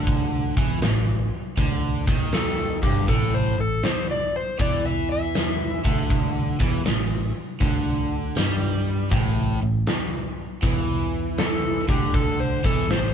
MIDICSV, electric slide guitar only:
0, 0, Header, 1, 2, 480
1, 0, Start_track
1, 0, Key_signature, 0, "minor"
1, 0, Tempo, 753769
1, 48, Time_signature, 4, 2, 24, 8
1, 8366, End_track
2, 0, Start_track
2, 0, Title_t, "Electric slide guitar"
2, 0, Program_c, 0, 29
2, 1489, Note_on_c, 0, 69, 84
2, 1798, Note_off_c, 0, 69, 0
2, 1802, Note_on_c, 0, 67, 82
2, 1959, Note_off_c, 0, 67, 0
2, 1966, Note_on_c, 0, 69, 83
2, 2121, Note_off_c, 0, 69, 0
2, 2130, Note_on_c, 0, 72, 91
2, 2283, Note_off_c, 0, 72, 0
2, 2295, Note_on_c, 0, 69, 80
2, 2446, Note_off_c, 0, 69, 0
2, 2450, Note_on_c, 0, 72, 92
2, 2603, Note_off_c, 0, 72, 0
2, 2616, Note_on_c, 0, 74, 94
2, 2766, Note_off_c, 0, 74, 0
2, 2777, Note_on_c, 0, 72, 76
2, 2926, Note_off_c, 0, 72, 0
2, 2936, Note_on_c, 0, 74, 82
2, 3086, Note_off_c, 0, 74, 0
2, 3092, Note_on_c, 0, 76, 92
2, 3244, Note_off_c, 0, 76, 0
2, 3260, Note_on_c, 0, 76, 92
2, 4666, Note_off_c, 0, 76, 0
2, 7256, Note_on_c, 0, 69, 95
2, 7562, Note_off_c, 0, 69, 0
2, 7576, Note_on_c, 0, 67, 94
2, 7727, Note_off_c, 0, 67, 0
2, 7736, Note_on_c, 0, 69, 93
2, 7887, Note_off_c, 0, 69, 0
2, 7895, Note_on_c, 0, 72, 87
2, 8046, Note_off_c, 0, 72, 0
2, 8058, Note_on_c, 0, 69, 79
2, 8208, Note_off_c, 0, 69, 0
2, 8225, Note_on_c, 0, 72, 85
2, 8366, Note_off_c, 0, 72, 0
2, 8366, End_track
0, 0, End_of_file